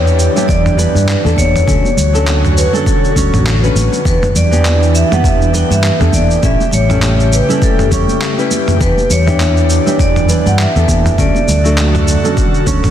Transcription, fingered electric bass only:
0.00 0.27 E2 medium
0.49 0.87 E2 medium
0.95 1.14 G2 medium
1.25 1.34 E2 medium
1.38 1.59 E2 medium
1.68 1.79 D2 medium
1.97 2.65 D2 medium
3.16 3.28 D2 medium
3.33 3.69 A1 medium
3.75 3.87 A1 medium
4.05 4.17 E2 medium
4.35 5.02 E2 medium
5.24 5.62 E2 medium
5.70 5.89 G2 medium
6.00 6.09 E2 medium
6.13 6.35 E2 medium
6.43 6.54 A1 medium
6.73 7.40 A1 medium
7.91 8.03 E2 medium
8.81 8.92 E2 medium
9.10 9.78 E2 medium
9.99 10.37 E2 medium
10.46 10.65 G2 medium
10.76 10.84 E2 medium
10.89 11.10 E2 medium
11.18 11.30 D2 medium
11.48 12.15 D2 medium
12.67 12.78 D2 medium
12.84 12.91 A1 medium

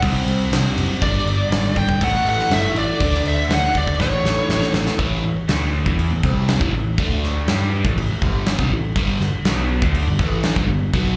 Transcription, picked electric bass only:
0.02 0.18 C2 loud
0.26 0.42 C2 medium
0.52 0.67 C2 medium
0.77 0.92 F#1 medium
1.02 1.17 G1 loud
1.26 1.42 G1 medium
1.50 1.82 G#1 medium
2.01 2.17 A1 loud
2.25 2.41 A1 loud
2.50 2.66 G1 medium
2.75 2.91 A1 medium
3.00 3.16 D2 medium
3.24 3.40 D2 medium
3.49 3.65 D2 loud
3.75 3.90 D2 medium
3.99 4.15 A1 medium
4.24 4.40 A1 loud
4.49 4.65 A1 medium
4.74 4.89 A1 medium
4.99 5.22 A1 medium
5.24 5.36 A1 medium
5.36 muted picked electric bass stroke soft
5.49 5.84 D2 medium
5.86 6.09 E2 medium
6.11 6.22 A1 medium
6.24 6.58 C2 loud
6.61 6.72 A1 loud
6.73 6.96 A1 medium
6.98 7.44 D2 medium
7.48 7.82 G2 medium
7.85 7.96 A1 medium
7.97 8.08 A1 medium
8.09 8.21 A1 medium
8.22 8.56 G1 loud
8.58 8.70 C2 loud
8.71 8.94 A1 medium
8.96 9.19 G1 loud
9.20 9.32 G1 medium
9.32 muted picked electric bass stroke soft
9.45 9.80 B1 loud
9.82 10.05 D2 medium
10.07 10.18 G1 medium
10.19 10.54 A1 loud
10.56 10.67 G1 loud
10.68 10.91 G1 medium
10.94 11.16 B1 loud

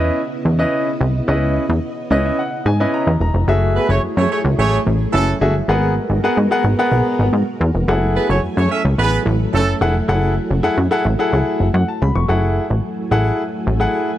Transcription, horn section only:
3.76 3.87 B3 medium
3.76 3.87 G#4 medium
3.76 3.87 B4 loud
3.89 4.01 A3 medium
3.89 4.00 G#4 medium
3.89 4.01 C#5 medium
4.17 4.28 A3 medium
4.17 4.28 G#4 medium
4.17 4.28 C#5 loud
4.31 4.42 A3 medium
4.31 4.42 G#4 medium
4.31 4.42 C#5 medium
4.58 4.80 A3 loud
4.58 4.80 G#4 loud
4.58 4.80 C#5 loud
5.13 5.35 E3 loud
5.13 5.35 C#4 loud
5.13 5.35 A4 loud
8.15 8.27 B3 medium
8.15 8.27 G#4 medium
8.15 8.27 B4 loud
8.29 8.41 A3 medium
8.29 8.41 G#4 medium
8.29 8.40 C#5 medium
8.58 8.68 A3 medium
8.58 8.68 G#4 medium
8.58 8.68 C#5 medium
8.71 8.82 C#4 medium
8.71 8.82 A4 medium
8.71 8.82 E5 medium
8.99 9.21 B3 loud
8.99 9.21 G#4 loud
8.99 9.21 B4 loud
9.53 9.75 E3 medium
9.53 9.75 C#4 loud
9.53 9.75 A4 loud

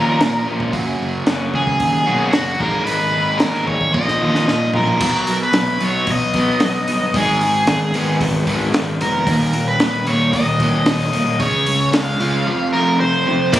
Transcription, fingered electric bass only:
0.00 0.16 D#2 medium
0.20 0.42 A#2 medium
0.47 0.69 A#1 medium
0.74 0.95 F#1 medium
1.01 1.22 F#1 medium
1.27 1.49 F#1 medium
1.54 1.76 C#2 medium
1.80 2.02 D#2 medium
2.08 2.30 B1 medium
2.35 2.56 F#1 medium
2.61 2.82 G#1 medium
2.88 3.10 G#1 medium
3.15 3.36 G#1 medium
3.42 3.63 G#1 medium
3.68 3.94 G#1 medium
3.94 4.16 A#1 medium
4.22 4.43 D#2 medium
4.48 4.70 A#2 medium
4.75 4.97 A#1 medium
5.01 5.47 B1 medium
5.55 5.78 B1 medium
5.82 6.05 B1 medium
6.07 6.54 B1 medium
6.62 6.85 B1 medium
6.88 7.11 G1 medium
7.14 7.61 G#1 medium
7.68 7.91 G#1 medium
7.94 8.17 G#1 medium
8.21 8.67 G#1 medium
8.74 8.97 G#1 medium
9.00 9.24 F1 medium
9.27 9.74 D#1 medium
9.80 10.04 D#1 medium
10.07 10.31 D#1 medium
10.33 10.80 D#1 medium
10.86 11.10 D#1 medium
11.13 11.37 D#1 medium
11.40 11.87 C#2 medium
11.94 12.17 C#2 medium
12.20 12.43 C#2 medium
13.53 13.60 A#1 medium

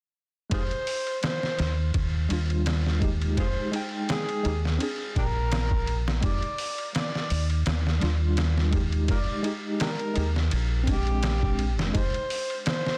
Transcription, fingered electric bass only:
0.52 0.69 F1 medium
1.60 1.91 D#2 medium
1.95 2.26 D#2 medium
2.31 3.35 D#2 medium
3.38 3.55 F1 medium
4.45 4.77 D#2 medium
5.16 6.20 A#1 medium
6.23 6.40 F1 medium
7.31 7.62 D#2 medium
7.67 7.98 D#2 medium
8.03 9.06 D#2 medium
9.09 9.26 F1 medium
10.17 10.48 D#2 medium
10.53 11.79 A#1 medium
11.79 11.93 F1 medium
11.95 12.12 F1 medium

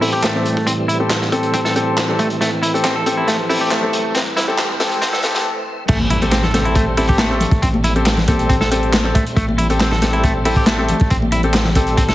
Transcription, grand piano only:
0.01 0.32 C4 medium
0.01 0.32 G4 medium
0.01 0.32 A4 loud
0.34 0.46 C4 medium
0.34 0.46 G4 medium
0.34 0.46 A4 medium
1.00 1.18 C4 medium
1.00 1.18 G4 medium
1.00 1.18 A4 medium
1.32 1.73 C4 medium
1.32 1.73 G4 medium
1.32 1.73 A4 medium
1.76 2.06 C4 medium
1.76 2.06 G4 medium
1.76 2.06 A4 loud
2.09 2.20 C4 medium
2.09 2.20 G4 medium
2.09 2.20 A4 medium
2.74 2.93 C4 medium
2.74 2.92 G4 medium
2.74 2.93 A4 medium
3.06 3.47 C4 medium
3.06 3.47 G4 medium
3.06 3.47 A4 medium
3.49 3.80 C4 medium
3.49 3.80 G4 medium
3.49 3.80 A4 loud
3.83 3.94 C4 medium
3.83 3.94 G4 medium
3.83 3.94 A4 medium
4.48 4.66 C4 medium
4.48 4.66 G4 medium
4.48 4.66 A4 medium
4.80 5.21 C4 medium
4.80 5.21 G4 medium
4.80 5.21 A4 medium
5.23 5.45 C4 medium
5.23 5.45 G4 medium
5.23 5.45 A4 loud
6.22 6.40 C4 medium
6.22 6.40 G4 medium
6.22 6.40 A4 medium
6.54 6.95 C4 medium
6.54 6.95 G4 medium
6.54 6.95 A4 loud
6.97 7.28 C4 medium
6.97 7.28 G4 medium
6.97 7.28 A4 loud
7.31 7.42 C4 medium
7.31 7.42 G4 medium
7.31 7.42 A4 medium
7.96 8.14 C4 medium
7.96 8.14 G4 medium
7.96 8.14 A4 medium
8.28 8.69 C4 medium
8.28 8.69 G4 medium
8.28 8.69 A4 medium
8.71 9.02 C4 medium
8.71 9.02 G4 medium
8.71 9.02 A4 loud
9.05 9.16 C4 medium
9.05 9.16 G4 medium
9.05 9.16 A4 medium
9.70 9.88 C4 medium
9.70 9.88 G4 medium
9.70 9.88 A4 medium
10.02 10.43 C4 medium
10.02 10.43 G4 medium
10.02 10.43 A4 loud
10.45 10.76 C4 medium
10.45 10.76 G4 medium
10.45 10.76 A4 loud
10.78 10.90 C4 medium
10.78 10.90 G4 medium
10.78 10.90 A4 medium
11.44 11.62 C4 medium
11.44 11.62 G4 medium
11.44 11.62 A4 medium
11.76 12.15 C4 medium
11.76 12.15 G4 medium
11.76 12.15 A4 loud

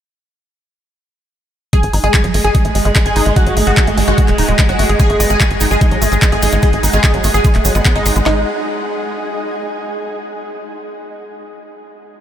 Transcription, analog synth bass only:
1.83 1.89 G#1 medium
1.93 1.99 G#1 medium
2.04 2.10 G#1 medium
2.24 2.30 G#1 medium
2.34 2.40 G#1 loud
2.44 2.50 G#1 medium
2.65 2.71 A1 medium
2.75 2.81 G#1 loud
2.85 2.91 G#1 medium
3.06 3.12 G#1 medium
3.16 3.22 G#1 loud
3.26 3.32 G#1 medium
3.47 3.52 G#1 medium
3.57 3.63 G#1 loud
3.67 3.73 G#1 medium
3.87 3.93 G#1 medium
3.98 4.03 G#1 loud
4.08 4.14 G#1 medium
4.28 4.34 D#1 medium
4.38 4.44 D#1 loud
4.49 4.54 D#1 medium
4.69 4.75 G#1 medium
4.79 4.85 G#1 loud
4.89 4.95 G#1 medium
5.10 5.16 G#1 medium
5.20 5.26 G#1 loud
5.30 5.36 G#1 medium
5.51 5.57 G#1 medium
5.61 5.67 G#1 loud
5.71 5.77 G#1 medium
5.91 5.97 A1 medium
6.02 6.08 G#1 loud
6.12 6.18 G#1 medium
6.32 6.38 G#1 medium
6.42 6.48 G#1 loud
6.53 6.59 G#1 medium
6.73 6.79 G#1 medium
6.83 6.89 G#1 loud
6.94 6.99 G#1 medium
7.14 7.20 G#1 medium
7.24 7.30 G#1 loud
7.34 7.40 G#1 medium
7.55 7.61 D#1 medium
7.65 7.71 G#1 loud
7.75 7.81 G#1 medium
7.96 8.01 G#1 medium
8.06 8.12 G#1 loud
8.16 8.22 G#1 medium
8.26 8.45 G#1 loud

